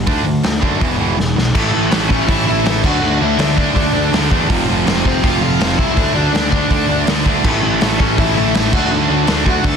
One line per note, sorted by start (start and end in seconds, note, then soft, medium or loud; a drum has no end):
0.06 0.23 D2 medium
0.06 0.24 D3 loud
0.06 0.24 A3 loud
0.06 0.25 D4 medium
0.06 kick loud
0.06 open hi-hat medium
0.25 0.42 D2 medium
0.25 0.42 D3 medium
0.25 0.42 A3 medium
0.43 0.60 D2 medium
0.43 0.60 D3 medium
0.43 0.60 A3 medium
0.43 snare loud
0.43 open hi-hat medium
0.61 0.78 F#2 medium
0.61 0.79 D3 medium
0.61 0.79 A3 loud
0.61 0.80 D4 loud
0.61 kick medium
0.80 0.97 E1 medium
0.80 0.97 E2 medium
0.80 0.98 B2 loud
0.80 0.98 E3 loud
0.80 kick loud
0.80 open hi-hat medium
0.98 1.16 E1 medium
0.98 1.16 E2 medium
0.98 1.17 B2 loud
0.98 1.17 E3 loud
1.18 1.34 E1 medium
1.18 1.34 E2 medium
1.18 1.35 B2 medium
1.18 snare medium
1.36 1.53 B1 medium
1.36 1.53 E2 medium
1.36 1.53 B2 medium
1.36 snare medium
1.54 1.70 A1 loud
1.54 1.70 A2 loud
1.54 1.71 E3 medium
1.54 1.72 A3 loud
1.54 kick loud
1.54 crash loud
1.71 1.89 A1 medium
1.71 1.89 A2 medium
1.71 1.90 E3 medium
1.71 1.91 A3 loud
1.90 2.07 A1 medium
1.90 2.08 A2 medium
1.90 2.08 E3 medium
1.90 2.10 A3 medium
1.90 snare loud
1.90 open hi-hat medium
2.09 2.25 A1 medium
2.09 2.26 A2 medium
2.09 2.27 E3 medium
2.09 2.29 A3 medium
2.09 2.27 C#4 medium
2.09 2.28 C#5 medium
2.09 kick medium
2.27 2.44 A1 medium
2.27 2.46 A2 loud
2.27 2.47 E3 loud
2.27 2.48 A3 loud
2.27 2.46 E4 medium
2.27 2.46 E5 loud
2.27 kick loud
2.27 open hi-hat medium
2.47 2.62 A1 loud
2.47 2.63 A2 medium
2.47 2.64 E3 medium
2.47 2.65 A3 loud
2.47 2.82 E4 medium
2.47 2.85 E5 loud
2.65 2.81 A1 medium
2.65 2.83 A2 medium
2.65 2.83 E3 medium
2.65 2.84 A3 loud
2.65 snare loud
2.65 open hi-hat medium
2.84 2.99 D2 loud
2.84 3.00 D3 medium
2.84 3.01 A3 loud
2.84 3.01 D4 loud
2.84 3.19 F#4 medium
2.84 3.19 F#5 loud
2.84 kick loud
2.84 crash loud
3.01 3.18 D2 loud
3.01 3.18 D3 loud
3.01 3.21 A3 loud
3.01 3.20 D4 loud
3.19 3.36 D2 medium
3.19 3.38 D3 medium
3.19 3.39 A3 medium
3.19 3.39 D4 medium
3.19 3.56 E4 medium
3.19 3.60 E5 loud
3.38 3.69 D2 loud
3.38 3.55 D3 medium
3.38 3.56 A3 medium
3.38 3.56 D4 loud
3.38 snare loud
3.38 open hi-hat medium
3.56 3.74 D3 medium
3.56 3.75 A3 medium
3.56 3.75 D4 loud
3.56 4.09 D4 medium
3.56 4.09 D5 medium
3.56 kick medium
3.75 3.92 D2 medium
3.75 3.92 D3 loud
3.75 3.94 A3 loud
3.75 3.93 D4 loud
3.75 kick loud
3.75 open hi-hat medium
3.93 4.09 D2 loud
3.93 4.11 D3 medium
3.93 4.12 A3 medium
3.93 4.13 D4 loud
4.12 4.28 D2 medium
4.12 4.29 D3 medium
4.12 4.31 A3 medium
4.12 4.30 D4 medium
4.12 snare loud
4.12 open hi-hat medium
4.30 4.47 E2 loud
4.30 4.48 D3 medium
4.30 4.50 A3 loud
4.30 4.49 D4 medium
4.30 kick medium
4.49 4.65 F1 loud
4.49 4.66 F2 loud
4.49 4.67 C3 loud
4.49 4.67 F3 loud
4.49 kick loud
4.49 open hi-hat medium
4.67 4.83 F1 medium
4.67 4.84 F2 medium
4.67 4.85 C3 medium
4.67 4.85 F3 loud
4.85 5.02 F1 medium
4.85 5.03 F2 medium
4.85 5.04 C3 medium
4.85 5.04 F3 medium
4.85 snare loud
4.85 open hi-hat medium
5.04 5.21 F1 medium
5.04 5.21 F2 medium
5.04 5.21 C3 loud
5.04 5.23 F3 loud
5.04 5.23 C4 medium
5.04 5.25 C5 medium
5.04 kick medium
5.22 5.39 F1 medium
5.22 5.39 F2 loud
5.22 5.40 C3 loud
5.22 5.40 F3 loud
5.22 5.41 F4 medium
5.22 5.41 F5 loud
5.22 kick loud
5.22 open hi-hat medium
5.40 5.57 F1 medium
5.40 5.58 F2 medium
5.40 5.58 C3 medium
5.40 5.59 F3 loud
5.40 5.76 F4 medium
5.40 5.77 F5 medium
5.59 5.76 F1 loud
5.59 5.76 F2 loud
5.59 5.78 C3 loud
5.59 5.78 F3 loud
5.59 snare loud
5.59 open hi-hat medium
5.77 5.94 C2 loud
5.77 5.96 F2 medium
5.77 5.95 C3 medium
5.77 5.96 F3 medium
5.77 6.12 E4 medium
5.77 6.12 E5 loud
5.77 kick medium
5.96 6.13 D2 loud
5.96 6.13 D3 medium
5.96 6.14 A3 loud
5.96 6.14 D4 loud
5.96 kick loud
5.96 open hi-hat medium
6.14 6.31 D2 medium
6.14 6.31 D3 medium
6.14 6.32 A3 medium
6.14 6.50 D4 medium
6.14 6.32 D4 loud
6.14 6.49 D5 loud
6.32 6.65 D2 medium
6.32 6.48 D3 medium
6.32 6.50 A3 medium
6.32 6.50 D4 medium
6.32 snare loud
6.32 open hi-hat medium
6.50 6.68 D3 loud
6.50 6.70 A3 loud
6.50 6.69 D4 loud
6.50 7.04 D4 medium
6.50 7.03 D5 medium
6.50 kick medium
6.69 6.86 D2 medium
6.69 6.86 D3 loud
6.69 6.88 A3 loud
6.69 6.88 D4 loud
6.69 kick loud
6.69 open hi-hat medium
6.88 7.05 D2 medium
6.88 7.05 D3 medium
6.88 7.07 A3 medium
6.88 7.06 D4 loud
7.06 7.23 D2 loud
7.06 7.24 D3 medium
7.06 7.25 A3 medium
7.06 7.25 D4 medium
7.06 snare loud
7.06 open hi-hat medium
7.25 7.41 D2 medium
7.25 7.43 D3 medium
7.25 7.44 A3 medium
7.25 7.44 D4 loud
7.25 kick medium
7.44 7.60 A1 medium
7.44 7.61 A2 loud
7.44 7.61 E3 loud
7.44 7.63 A3 loud
7.44 kick loud
7.44 crash loud
7.62 7.78 A1 medium
7.62 7.79 A2 medium
7.62 7.81 E3 medium
7.62 7.82 A3 loud
7.80 7.97 A1 loud
7.80 7.97 A2 medium
7.80 7.98 E3 medium
7.80 8.00 A3 medium
7.80 snare loud
7.80 open hi-hat medium
7.99 8.15 A1 medium
7.99 8.16 A2 loud
7.99 8.17 E3 medium
7.99 8.19 A3 loud
7.99 8.17 C#4 medium
7.99 8.17 C#5 medium
7.99 kick medium
8.18 8.33 A1 medium
8.18 8.35 A2 loud
8.18 8.35 E3 loud
8.18 8.37 A3 loud
8.18 8.34 E4 medium
8.18 8.34 E5 medium
8.18 kick loud
8.18 open hi-hat medium
8.35 8.52 A1 loud
8.35 8.54 A2 medium
8.35 8.55 E3 medium
8.35 8.56 A3 loud
8.35 8.70 E4 medium
8.35 8.73 E5 loud
8.54 8.70 A1 loud
8.54 8.72 A2 medium
8.54 8.73 E3 medium
8.54 8.73 A3 loud
8.54 snare loud
8.54 open hi-hat medium
8.72 8.88 D2 loud
8.72 8.90 D3 medium
8.72 8.91 A3 loud
8.72 8.91 D4 loud
8.72 8.90 F#4 medium
8.72 8.90 F#5 medium
8.72 kick loud
8.72 crash loud
8.91 9.07 D2 medium
8.91 9.08 D3 loud
8.91 9.09 A3 medium
8.91 9.09 D4 loud
9.09 9.25 D2 medium
9.09 9.26 D3 medium
9.09 9.27 A3 medium
9.09 9.27 D4 loud
9.27 9.58 D2 medium
9.27 9.43 D3 medium
9.27 9.45 A3 medium
9.27 9.45 D4 loud
9.27 snare loud
9.27 open hi-hat medium
9.44 9.62 D3 loud
9.44 9.63 A3 loud
9.44 9.63 D4 medium
9.44 9.64 F#4 medium
9.44 kick medium
9.49 9.67 F#5 medium
9.63 9.77 D2 loud
9.63 9.77 D3 loud
9.63 9.77 A3 loud
9.63 9.77 D4 loud
9.63 9.77 A4 medium
9.63 9.77 A5 medium
9.63 kick loud
9.63 open hi-hat medium